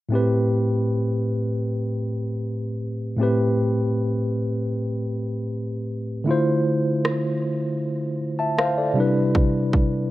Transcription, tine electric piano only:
0.09 3.14 A2 medium
0.09 3.15 A3 medium
0.09 3.16 C4 medium
0.14 3.17 G4 medium
0.14 3.17 B4 medium
3.16 6.22 A2 medium
3.16 6.23 A3 medium
3.16 6.23 C4 medium
3.21 6.24 G4 medium
3.21 6.25 B4 medium
6.24 8.91 D3 medium
6.24 8.92 A3 medium
6.24 8.93 E4 medium
6.29 8.93 F4 medium
6.29 8.18 C5 medium
8.39 8.58 E5 soft
8.39 8.57 A5 medium
8.58 8.77 C5 medium
8.58 8.76 F5 medium
8.78 9.14 A4 soft
8.78 9.14 D5 medium
8.93 10.11 C3 medium
8.93 10.11 G3 medium
8.93 10.11 D4 medium
8.98 10.11 E4 medium
8.98 10.11 B4 medium

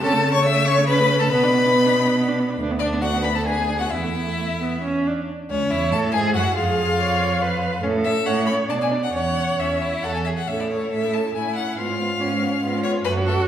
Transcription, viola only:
0.03 0.15 C#4 loud
0.13 0.26 A3 medium
0.25 0.36 C#4 medium
0.35 0.44 A3 medium
0.44 0.58 C#4 medium
0.56 0.68 A3 medium
0.67 0.79 C#4 medium
0.77 0.88 A3 medium
0.88 1.01 C#4 medium
1.00 1.12 A3 medium
1.11 1.22 C#4 medium
1.21 1.31 A3 medium
1.32 1.45 B3 loud
1.43 1.55 D4 medium
1.54 1.67 B3 medium
1.65 1.75 D4 medium
1.76 1.87 B3 medium
1.86 1.98 D4 medium
1.96 2.08 B3 medium
2.07 2.17 D4 medium
2.17 2.30 B3 medium
2.28 2.41 D4 medium
2.39 2.51 B3 medium
2.50 2.60 D4 medium
2.61 2.72 D4 medium
2.71 2.83 B3 medium
2.82 2.94 D4 medium
2.93 3.03 B3 medium
3.03 3.15 D4 medium
3.13 3.26 B3 medium
3.25 3.37 D4 medium
3.35 3.46 B3 medium
3.47 3.59 D4 medium
3.58 3.70 B3 medium
3.69 3.82 D4 medium
3.80 3.92 B3 medium
3.92 4.05 B3 medium
4.03 4.17 A3 medium
4.15 4.28 B3 medium
4.26 4.37 A3 medium
4.37 4.45 A3 medium
4.60 4.82 B3 medium
4.82 5.08 C#4 medium
5.07 5.28 D4 medium
5.71 6.11 C#5 medium
6.14 6.58 E4 medium
6.56 6.99 G#4 loud
6.99 7.43 C#5 medium
7.42 7.83 B4 medium
7.83 8.27 A4 loud
8.25 8.70 C#5 loud
8.69 9.12 D5 medium
9.13 10.23 C#5 loud
10.49 11.31 A4 medium
11.35 11.79 E4 medium
11.78 12.22 F4 medium
12.20 12.63 C#4 medium
12.62 13.06 F4 medium
13.04 13.48 F#4 loud

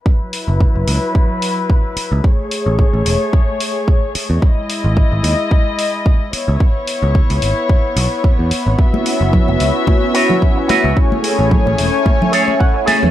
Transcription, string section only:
0.06 2.22 F#3 medium
0.06 2.22 E4 medium
0.06 2.22 B4 medium
2.24 4.40 A3 medium
2.24 4.40 G#4 medium
2.24 4.40 C#5 medium
4.43 6.32 G#3 medium
4.43 6.31 E4 medium
4.43 6.32 D#5 medium
6.33 10.93 B3 medium
6.33 8.76 E4 medium
6.33 8.76 C#5 medium
8.78 10.94 F#4 medium
8.78 10.94 E5 medium
10.97 13.11 A3 medium
10.97 13.11 C#5 medium
10.97 13.11 G#5 medium

